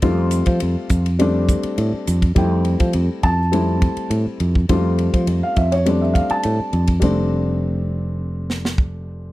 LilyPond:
<<
  \new Staff \with { instrumentName = "Grand piano" } { \time 4/4 \key f \major \tempo 4 = 103 r1 | g''4. a''4. r4 | r4 r16 f''16 e''16 des''16 d''16 e''16 f''16 a''4 r16 | r1 | }
  \new Staff \with { instrumentName = "Grand piano" } { \time 4/4 \key f \major <g a c' f'>4.~ <g a c' f'>16 r16 <g a c' d'>4.~ <g a c' d'>16 r16 | <g a c' e'>4.~ <g a c' e'>16 r16 <g a c' e'>4.~ <g a c' e'>16 r16 | <g a c' f'>4.~ <g a c' f'>16 r16 <g a c' d'>4.~ <g a c' d'>16 r16 | <g a c' d'>1 | }
  \new Staff \with { instrumentName = "Fretless electric bass" } { \clef bass \time 4/4 \key f \major f,8. f16 f,16 r16 f,4~ f,16 r16 a,16 r16 f,8 | f,8. f16 f,16 r16 f,4~ f,16 r16 a,16 r16 f,8 | f,8. f16 f,16 r16 f,4~ f,16 r16 a,16 r16 f,8 | f,,1 | }
  \new DrumStaff \with { instrumentName = "Drums" } \drummode { \time 4/4 <bd cymr>8 <hhp cymr>16 <bd cymr>16 cymr8 <hhp bd cymr>16 cymr16 cymr8 <hhp bd cymr>16 cymr16 cymr8 <hhp cymr>16 <bd cymr>16 | <bd cymr>8 cymr16 <bd cymr>16 cymr8 <bd cymr>8 cymr8 <bd cymr>16 cymr16 cymr8 cymr16 bd16 | <bd cymr>8 cymr16 <bd cymr>16 cymr8 <bd cymr>16 cymr16 cymr8 <bd cymr>16 cymr16 cymr8 cymr16 <bd cymr>16 | <bd cymr>4 r4 r8 sn16 sn16 bd4 | }
>>